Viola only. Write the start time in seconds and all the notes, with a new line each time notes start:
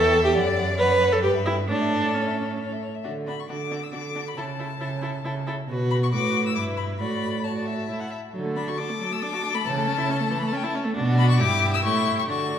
Already playing: A4
0.24 G4
0.78 B4
1.12 A4
1.23 G4
1.46 E4
1.69 D4
2.14 C#4
3.05 D4
3.27 D4
3.50 D4
3.71 D4
3.92 D4
4.15 D4
4.37 E4
4.59 E4
4.80 E4
5.02 E4
5.25 E4
5.47 E4
5.69 F#4
6.12 F#4
6.56 E4
7.00 F#4
7.45 F#4
7.89 E4
8.34 F#3
8.45 A3
8.56 D4
8.68 F#4
8.79 D4
8.89 A3
9.00 F#3
9.11 A3
9.22 D4
9.33 F#4
9.43 D4
9.54 A3
9.66 E3
9.76 A3
9.87 C#4
9.98 E4
10.09 C#4
10.20 A3
10.31 E3
10.42 A3
10.52 C#4
10.64 E4
10.75 C#4
10.85 A3
10.96 D4
11.40 E4
11.84 E4
12.29 D4